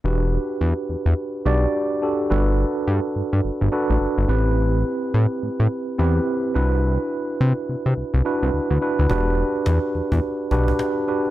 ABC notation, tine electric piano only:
X:1
M:4/4
L:1/8
Q:"Swing 16ths" 1/4=106
K:Em
V:1 name="Tine electric piano"
[DFGB]3 z2 [DFGd] z [DFGA] | [DFAB]3 z2 [DFAB] z [CEGB]- | [CEGB]2 z3 [CEGB] z [DEFB]- | [DEFB]2 z3 [DEFB] z [DEFB] |
[DFGB]3 z2 [DFGB] z [DFGB] |]